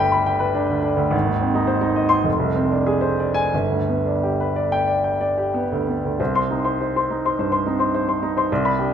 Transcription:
Already playing: G1 D2 D4 G4 B4 D5 B5
0.00 G5
0.12 B5
0.26 G5
0.40 B4
0.55 D4
0.69 D2
0.82 D4
0.97 D2
1.11 G#1
1.26 D#2
1.41 C4
1.55 D#4
1.67 C5
1.81 D#4
1.96 D#5
2.09 C6
2.24 F1
2.40 C2
2.56 C4
2.72 D4
2.87 G#4
3.01 C5
3.20 D5
3.34 G#5
3.54 G1
3.70 D2
3.89 B3
4.06 D4
4.23 G4
4.40 B4
4.56 D5
4.72 G5
4.87 D5
5.04 G5
5.21 D5
5.38 G4
5.54 B3
5.72 D2
5.88 B3
6.05 D2
6.20 C2 C5
6.35 C5 C6
6.50 C4 D#4
6.65 C5 C6
6.81 C5
6.96 C5 C6
7.10 D#4
7.25 C5 C6
7.39 G2 C5
7.52 C5 C6
7.66 C4 D#4
7.79 C5 C6
7.94 C5
8.08 C5 C6
8.23 D#4
8.37 C5 C6
8.52 C2 D5
8.65 D5 B5
8.79 D4 G4

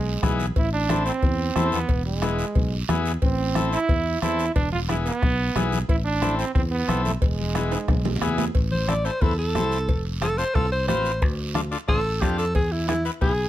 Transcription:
Already playing: B1 G#3
0.23 B1 B3 E4 G#4, bombo low, bombo rim, high conga, low timbale, short guiro
0.39 high conga, short guiro
0.56 A1 E4, bombo low, cowbell, long guiro
0.73 D4
0.89 C4 E4 A4, bombo rim, high conga, short guiro
1.06 C4, short guiro
1.22 E2, bombo low, cowbell, high conga, low conga, long guiro
1.56 E2 C4 E4 A4, bombo rim, high conga, low timbale, short guiro
1.72 B3, high conga, short guiro
1.89 E1, bombo low, cowbell, high conga, long guiro
2.06 G#3
2.22 B3 E4 G#4, bombo rim, high conga, short guiro
2.39 short guiro
2.55 B1, bombo low, cowbell, high conga, low conga, long guiro
2.89 E2 B3 E4 G#4, bombo rim, high conga, low timbale, short guiro
3.06 short guiro
3.22 A1 C4, bombo low, cowbell, high conga, long guiro
3.55 C4 E4 A4, bombo rim, high conga, short guiro
3.73 E4, short guiro
3.89 E2, bombo low, cowbell, high conga, low conga, long guiro
4.22 E2 C4 E4 A4, bombo rim, high conga, short guiro
4.39 short guiro
4.55 E1 D4, bombo low, cowbell, high conga, low conga, long guiro
4.72 F4, high conga
4.88 B3 E4 G#4, bombo rim, high conga, short guiro
5.06 B3, short guiro
5.23 B1, bombo low, bombo rim, cowbell, high conga, low conga, long guiro
5.55 B1 B3 E4 G#4, bombo rim, high conga, low timbale, short guiro
5.72 high conga, short guiro
5.88 A1 E4, bombo low, cowbell, long guiro
6.05 D4
6.22 C4 E4 A4, bombo rim, high conga, short guiro
6.38 C4, short guiro
6.55 E2 C4, bombo low, cowbell, high conga, low conga, long guiro
6.71 B3
6.88 B1 C4 E4 A4, bombo rim, high conga, short guiro
7.05 A3, high conga, short guiro
7.22 E1 G#3, bombo low, cowbell, high conga, long guiro
7.39 high conga
7.54 B3 E4 G#4, bombo rim, high conga, short guiro
7.72 high timbale, short guiro
7.88 B1, bombo low, bombo rim, cowbell, high conga, low conga, high timbale, long guiro
8.05 high conga, low timbale
8.16 low conga
8.21 E2 B3 E4 G#4, bombo rim, low timbale, short guiro
8.27 low conga
8.38 low conga, low timbale, short guiro
8.55 A1, bombo low, cowbell, high conga, long guiro
8.72 C5, high conga
8.88 C4 E4 A4 D5, bombo rim, high conga, short guiro
9.05 C4 E4 A4 C5, short guiro
9.21 E2 C4 E4 A4 B4, bombo low, cowbell, high conga, low conga, long guiro
9.39 A4
9.55 C2 C4 E4 A4, bombo rim, high conga, low timbale, short guiro
9.72 short guiro
9.89 F1, bombo low, cowbell, high conga, long guiro
10.21 C4 F4 A4, bombo rim, high conga, short guiro
10.38 C4 F4 A4 C5, short guiro
10.55 C2 C4 F4 A4, bombo low, bombo rim, cowbell, high conga, low conga, long guiro
10.72 C5
10.88 A1 C4 F4 B4 C5, bombo rim, high conga, low timbale, short guiro
11.05 short guiro
11.22 D2, bombo low, cowbell, high conga, long guiro
11.55 D4 F4 A4, bombo rim, high conga, short guiro
11.71 D4 F4 A4, short guiro
11.88 A1 D4 F4 A4 C5, bombo low, bombo rim, cowbell, high conga, low conga, long guiro
12.21 F2 D4 F4 G4 A4, bombo low, bombo rim, high conga, low timbale, short guiro
12.38 A4, short guiro
12.55 E2 G#4, bombo low, cowbell, high conga, low conga, long guiro
12.72 E4
12.88 B3 E4 G#4, bombo rim, high conga, short guiro
13.05 B3 E4 B4, short guiro
13.21 B1 B3 E4 G#4, bombo low, cowbell, high conga, low conga, long guiro

